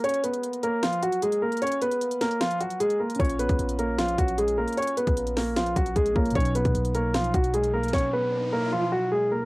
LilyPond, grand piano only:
\new Staff \with { instrumentName = "Grand piano" } { \time 4/4 \key bes \phrygian \tempo 4 = 152 <des' des''>8 <ces' ces''>4 <bes bes'>8 <f f'>8 <ges ges'>8 <aes aes'>8 <bes bes'>8 | <des' des''>8 <ces' ces''>4 <bes bes'>8 <f f'>8 <ges ges'>8 <aes aes'>8 <bes bes'>8 | <des' des''>8 <ces' ces''>4 <bes bes'>8 <f f'>8 <ges ges'>8 <aes aes'>8 <bes bes'>8 | <des' des''>8 <ces' ces''>4 <bes bes'>8 <f f'>8 <ges ges'>8 <aes aes'>8 <bes bes'>8 |
<des' des''>8 <b b'>4 <bes bes'>8 <f f'>8 <fis fis'>8 <aes aes'>8 <bes bes'>8 | <des' des''>8 <b b'>4 <bes bes'>8 <f f'>8 <fis fis'>8 <aes aes'>8 <bes bes'>8 | }